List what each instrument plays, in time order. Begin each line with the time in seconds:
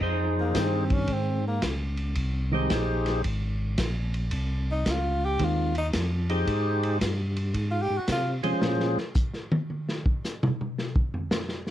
Already playing: hollow-body jazz guitar F3 C4 D#4 G#4
0.01 tonewheel organ F2 D#4 G#4 C5, kick
0.40 tenor saxophone A#3
0.55 tonewheel organ G2, hollow-body jazz guitar D#3 C4, kick, snare, hi-hat pedal, ride
0.59 tenor saxophone C4
0.90 tenor saxophone C#4, kick, ride
1.08 tonewheel organ G#2, kick, ride
1.13 tenor saxophone C4
1.48 tenor saxophone A#3
1.62 tonewheel organ C#2, kick, snare, hi-hat pedal, ride
1.97 ride
2.15 tonewheel organ C2, kick, ride
2.52 hollow-body jazz guitar D#3 G#3 C4, tonewheel organ D#4 G4 G#4 C5
2.70 tonewheel organ A#1, kick, snare, hi-hat pedal, ride
3.06 snare, ride
3.24 tonewheel organ G#1, kick, ride
3.78 tonewheel organ A#1, kick, snare, hi-hat pedal, ride
4.14 ride
4.31 tonewheel organ C2, kick, ride
4.71 tenor saxophone D#4
4.86 tonewheel organ C#2, kick, snare, hi-hat pedal, ride
4.91 tenor saxophone F4
5.25 tenor saxophone G4
5.39 tonewheel organ D#2, hollow-body jazz guitar D#3 G#3 C4, kick, ride
5.44 tenor saxophone F4
5.75 tenor saxophone D#4, ride
5.93 tonewheel organ F2, kick, snare, hi-hat pedal, ride
6.29 tonewheel organ D#4 G4 G#4 C5, ride
6.47 tonewheel organ G#2, kick, ride
6.83 ride
7.01 tonewheel organ G2, kick, snare, hi-hat pedal, ride
7.37 ride
7.54 tonewheel organ G#2, kick, ride
7.71 tenor saxophone F4
7.82 tenor saxophone G4
7.90 tonewheel organ G#2
7.98 tenor saxophone F#4
8.08 tonewheel organ C3, kick, snare, hi-hat pedal, ride
8.12 tenor saxophone F4
8.43 tonewheel organ C3 C#4 F4 G#4 C5, hollow-body jazz guitar F3 G#3 C#4, ride
8.62 tonewheel organ A#2, snare
8.80 snare
8.98 snare
9.15 kick, hi-hat pedal
9.34 snare
9.52 high tom
9.70 high tom
9.89 snare
10.06 kick
10.24 snare, hi-hat pedal
10.43 mid tom
10.61 mid tom
10.78 snare
10.96 kick
11.14 floor tom
11.31 snare, hi-hat pedal
11.49 snare
11.67 snare